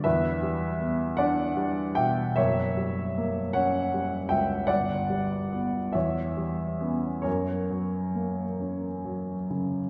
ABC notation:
X:1
M:12/8
L:1/8
Q:3/8=49
K:F#phr
V:1 name="Grand piano"
[Be]3 [df]2 [eg] [ce]3 [cf]2 [eg] | [df]3 [ce]3 [^Ac]4- [Ac] z |]
V:2 name="Grand piano" clef=bass
E,, G, B, D G, B,, F,,, G, ^A, C G, C,, | G,,, G, B, E,, G, [B,C] F,, F, ^A, C F, C, |]